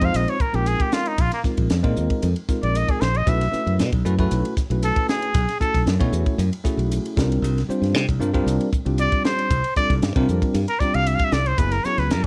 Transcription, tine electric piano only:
0.01 0.36 G#3 medium
0.01 0.36 C4 medium
0.01 0.36 D#4 medium
0.01 0.36 F4 medium
0.01 0.37 C5 medium
0.53 1.14 G#3 medium
0.53 1.14 C4 medium
0.53 1.15 D#4 medium
0.53 1.15 F4 medium
0.53 1.15 A#4 medium
1.44 1.70 G#3 medium
1.44 1.70 C4 medium
1.44 1.71 D#4 medium
1.44 1.71 F4 medium
1.44 1.71 A#4 medium
1.83 2.27 G#3 medium
1.83 2.27 C4 medium
1.83 2.27 D#4 medium
1.83 2.28 F4 medium
1.83 2.28 A#4 loud
2.48 3.01 G#3 medium
2.48 3.01 C4 medium
2.48 3.02 D#4 medium
2.48 3.02 F4 medium
2.48 3.02 A#4 medium
3.26 3.44 A3 medium
3.26 3.45 C#4 medium
3.26 3.45 E4 medium
3.26 3.45 F#4 medium
3.26 3.45 B4 medium
3.52 3.88 A3 medium
3.52 3.88 C#4 medium
3.52 3.88 E4 medium
3.52 3.88 F#4 medium
3.52 3.88 B4 medium
4.05 4.14 A3 medium
4.05 4.14 C#4 medium
4.05 4.14 E4 medium
4.05 4.14 F#4 medium
4.05 4.15 B4 loud
4.19 4.53 A3 medium
4.19 4.53 C#4 medium
4.19 4.54 E4 medium
4.19 4.54 F#4 medium
4.19 4.54 B4 loud
4.70 5.31 A3 medium
4.70 5.32 C#4 medium
4.70 5.32 E4 medium
4.70 5.32 F#4 medium
4.70 5.32 B4 medium
5.60 5.87 A3 medium
5.60 5.87 C#4 medium
5.60 5.87 E4 medium
5.60 5.88 F#4 medium
5.60 5.88 A4 medium
6.00 6.44 A3 medium
6.00 6.44 C#4 medium
6.00 6.44 E4 medium
6.00 6.44 F#4 medium
6.00 6.44 C#5 loud
6.64 7.16 A3 medium
6.64 7.17 C#4 medium
6.64 7.17 E4 medium
6.64 7.17 F#4 medium
6.64 7.17 G#4 medium
7.17 7.59 G3 medium
7.17 7.59 C4 medium
7.17 7.59 D4 medium
7.17 7.59 F4 medium
7.17 7.59 A#4 medium
7.69 8.04 G3 medium
7.69 8.05 C4 medium
7.69 8.05 D4 medium
7.69 8.05 F4 medium
7.69 8.05 C5 medium
8.20 8.30 G3 medium
8.20 8.30 C4 medium
8.20 8.30 D4 medium
8.20 8.30 F4 medium
8.20 8.30 A#4 loud
8.33 8.69 G3 loud
8.33 8.69 C4 medium
8.33 8.69 D4 medium
8.33 8.69 F4 medium
8.33 8.69 A#4 loud
8.85 9.47 G3 medium
8.85 9.47 C4 medium
8.85 9.47 D4 medium
8.85 9.47 F4 medium
8.85 9.48 G4 medium
9.76 10.03 G3 medium
9.76 10.03 C4 medium
9.76 10.03 D4 medium
9.76 10.03 F4 medium
9.76 10.03 A4 medium
10.16 10.59 G3 loud
10.16 10.60 C4 medium
10.16 10.60 D4 medium
10.16 10.60 F4 medium
10.16 10.60 A#4 loud
10.81 11.33 G3 medium
10.81 11.34 C4 medium
10.81 11.34 D4 medium
10.81 11.34 F4 medium
10.81 11.34 G4 medium
11.58 11.76 F#3 medium
11.58 11.76 B3 medium
11.58 11.77 C#4 medium
11.58 11.77 E4 medium
11.58 11.77 G#4 medium
11.85 12.20 F#3 medium
11.85 12.20 B3 medium
11.85 12.20 C#4 medium
11.85 12.21 E4 medium
11.85 12.21 G#4 medium

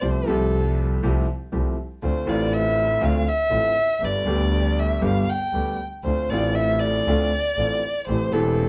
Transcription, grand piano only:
0.01 0.23 C2 soft
0.01 0.23 C3 soft
0.01 0.23 F3 soft
0.01 0.23 A3 soft
0.01 0.23 C4 soft
0.01 0.23 G4 soft
0.26 0.99 C2 medium
0.26 0.99 C3 medium
0.26 0.98 F3 medium
0.26 0.98 A3 medium
0.26 0.99 C4 medium
0.26 1.00 G4 medium
1.03 1.24 C2 medium
1.03 1.24 C3 medium
1.03 1.24 F3 medium
1.03 1.24 A3 medium
1.03 1.24 C4 medium
1.03 1.24 G4 medium
1.52 1.73 C2 soft
1.52 1.73 C3 soft
1.52 1.73 F3 soft
1.52 1.73 A3 soft
1.52 1.73 C4 soft
1.52 1.73 G4 soft
2.02 2.23 D2 soft
2.02 2.23 D3 soft
2.02 2.23 A3 soft
2.02 2.24 C4 soft
2.02 2.24 F4 soft
2.25 2.97 A1 medium
2.25 2.97 A2 medium
2.25 2.96 D3 medium
2.25 2.97 A3 medium
2.25 2.98 C4 medium
2.25 2.98 F4 medium
3.01 3.22 D2 medium
3.01 3.22 D3 medium
3.01 3.22 A3 medium
3.01 3.22 C4 medium
3.01 3.22 F4 medium
3.50 3.72 A1 soft
3.50 3.72 A2 soft
3.50 3.71 D3 soft
3.50 3.72 A3 soft
3.50 3.72 C4 soft
3.50 3.72 F4 soft
4.02 4.23 G1 soft
4.02 4.23 G2 soft
4.02 4.22 D3 soft
4.02 4.22 G3 soft
4.02 4.23 B3 soft
4.02 4.23 G4 soft
4.24 4.98 D2 medium
4.24 4.98 D3 medium
4.24 4.98 G3 medium
4.24 4.98 B3 medium
4.24 4.99 G4 medium
5.01 5.23 G1 medium
5.01 5.23 G2 medium
5.01 5.23 D3 medium
5.01 5.23 G3 medium
5.01 5.23 B3 medium
5.01 5.23 G4 medium
5.54 5.75 D2 soft
5.54 5.76 D3 soft
5.54 5.75 G3 soft
5.54 5.75 B3 soft
5.54 5.76 G4 soft
6.05 6.27 D2 soft
6.05 6.27 D3 soft
6.05 6.27 A3 soft
6.05 6.27 C4 soft
6.05 6.27 F4 soft
6.29 7.04 A1 medium
6.29 7.03 A2 medium
6.29 7.03 D3 medium
6.29 7.03 A3 medium
6.29 7.04 C4 medium
6.29 7.04 F4 medium
7.07 7.29 D2 medium
7.07 7.29 D3 medium
7.07 7.29 A3 medium
7.07 7.29 C4 medium
7.07 7.29 F4 medium
7.59 7.79 A1 soft
7.59 7.79 A2 soft
7.59 7.79 D3 soft
7.59 7.79 A3 soft
7.59 7.79 C4 soft
7.59 7.79 F4 soft
8.08 8.29 A1 soft
8.08 8.29 A2 medium
8.08 8.29 E3 soft
8.08 8.29 A3 soft
8.08 8.29 C4 soft
8.08 8.29 G4 soft
8.32 8.69 E1 medium
8.32 8.69 E2 medium
8.32 8.69 E3 medium
8.32 8.69 A3 medium
8.32 8.69 C4 medium
8.32 8.69 G4 medium

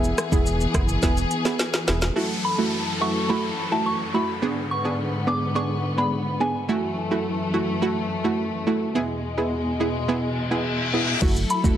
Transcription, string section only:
0.00 2.14 E3 medium
0.00 2.14 B3 medium
0.00 2.14 G#4 medium
2.16 4.40 F#2 medium
2.16 4.40 E3 medium
2.16 4.40 A4 medium
4.42 6.67 G#2 medium
4.42 6.67 D3 medium
4.42 6.67 B3 medium
6.69 8.93 F#2 medium
6.69 8.93 E3 medium
6.69 8.93 A3 medium
8.95 11.20 E2 medium
8.95 11.20 B2 medium
8.95 11.20 G#3 medium
11.22 11.77 F#3 medium
11.22 11.77 E4 medium
11.22 11.77 A4 medium

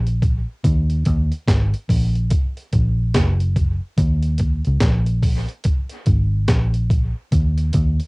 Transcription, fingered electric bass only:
0.00 0.44 A#1 medium
0.65 1.04 D#2 loud
1.07 1.31 D#2 medium
1.48 1.72 G#1 loud
1.90 2.29 A#1 medium
2.74 3.12 A#1 medium
3.15 3.79 F#1 medium
3.98 4.62 D#2 loud
4.67 4.81 C#2 medium
4.82 5.45 A#1 loud
6.07 6.46 G#1 medium
6.49 7.13 A#1 medium
7.33 7.72 D#2 loud
7.75 7.99 D#2 loud

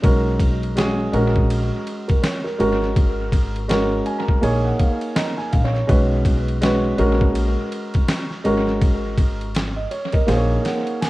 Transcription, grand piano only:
0.02 0.70 G#3 medium
0.02 0.70 C#4 medium
0.02 0.71 F#4 medium
0.02 0.71 A#4 loud
0.76 1.11 G#3 medium
0.76 1.11 C#4 medium
0.76 1.12 F#4 medium
0.76 1.14 G#4 loud
1.12 2.47 G#3 medium
1.12 2.47 C#4 medium
1.12 2.47 F#4 medium
1.12 1.87 A#4 loud
2.08 2.22 A#4 medium
2.22 2.43 C#5 medium
2.44 2.59 A#4 medium
2.58 3.60 G#3 medium
2.58 3.60 C#4 medium
2.58 3.60 F#4 medium
2.58 3.61 A#4 loud
3.68 4.42 G#3 medium
3.68 4.42 C#4 medium
3.68 4.43 F#4 medium
3.68 4.43 A#4 loud
4.06 4.17 G#5 medium
4.18 4.41 A#5 medium
4.41 5.76 A#3 medium
4.41 5.76 D#4 medium
4.41 5.77 G#4 medium
4.41 5.16 C#5 loud
4.41 4.63 G#5 medium
4.64 4.78 F#5 medium
4.79 5.13 F5 medium
5.16 5.61 D#5 medium
5.16 5.36 A#5 medium
5.37 5.52 G#5 medium
5.52 5.73 F5 medium
5.64 5.72 C#5 medium
5.74 6.09 C#5 medium
5.87 6.55 G#3 medium
5.87 6.56 C#4 medium
5.87 6.56 F#4 medium
5.87 6.56 B4 medium
6.61 6.96 G#3 medium
6.61 6.97 C#4 medium
6.61 6.97 F#4 medium
6.61 6.99 B4 loud
6.97 8.32 G#3 loud
6.97 8.33 C#4 medium
6.97 8.33 F#4 medium
6.97 8.33 A#4 loud
8.44 9.45 G#3 loud
8.44 9.45 C#4 medium
8.44 9.46 F#4 medium
8.44 9.46 A#4 loud
9.76 9.91 D#5 medium
9.91 10.12 C#5 medium
10.13 10.48 A#4 medium
10.13 10.27 D#5 medium
10.27 11.10 A#3 medium
10.27 11.10 D#4 medium
10.27 11.10 G#4 medium
10.27 10.36 C5 medium
10.27 10.62 F5 medium
10.35 11.10 C#5 loud
10.65 10.99 F#5 medium
11.01 11.10 G#5 medium

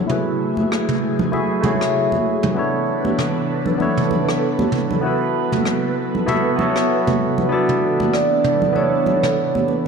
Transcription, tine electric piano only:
0.00 0.11 B3 medium
0.00 0.11 D4 medium
0.00 0.08 E4 medium
0.00 0.11 A4 medium
0.00 0.11 C#5 medium
0.07 1.28 A3 medium
0.07 1.29 E4 medium
0.07 1.30 F#4 medium
0.07 1.30 G#4 medium
0.11 1.31 B4 medium
1.32 1.60 A3 medium
1.32 1.60 E4 medium
1.32 1.61 F#4 medium
1.32 1.61 G#4 medium
1.32 1.61 E5 medium
1.61 2.52 A3 medium
1.61 2.53 E4 medium
1.61 2.53 F#4 medium
1.61 2.54 G#4 medium
1.66 2.55 C#5 medium
2.54 3.76 B3 medium
2.54 3.77 D4 medium
2.54 3.77 E4 medium
2.54 3.78 A4 medium
2.59 3.78 C#5 medium
3.78 5.00 B3 medium
3.78 5.00 D4 medium
3.78 5.01 E4 medium
3.78 5.01 A4 medium
3.82 5.02 C#5 medium
5.01 6.23 B3 medium
5.01 6.24 E4 medium
5.01 6.24 F#4 medium
5.01 6.25 A4 medium
5.06 6.26 B4 medium
6.26 6.55 B3 medium
6.26 6.55 E4 medium
6.26 6.55 F#4 medium
6.26 6.56 A4 medium
6.26 6.56 E5 medium
6.56 7.47 B3 medium
6.56 7.48 E4 medium
6.56 7.48 F#4 medium
6.56 7.49 A4 medium
6.61 7.50 C#5 medium
7.49 8.71 B3 medium
7.49 8.71 D4 medium
7.49 8.72 E4 medium
7.49 8.73 A4 medium
7.54 8.73 D5 medium
8.73 9.88 B3 medium
8.73 9.88 D4 medium
8.73 9.88 E4 medium
8.73 9.88 A4 medium
8.77 9.88 C#5 medium

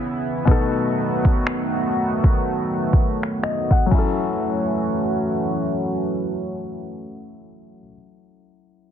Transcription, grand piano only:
0.00 0.42 A2 medium
0.00 0.43 A3 medium
0.00 0.44 C#4 medium
0.00 0.45 G#4 medium
0.45 3.86 B2 medium
0.45 3.88 B3 medium
0.49 3.88 D#4 medium
0.49 3.89 A4 medium
3.43 3.69 D#5 medium
3.72 3.91 F#5 medium
3.86 7.79 F#3 medium
3.90 7.83 C#4 medium
3.94 7.87 E4 medium
3.98 7.91 A4 medium

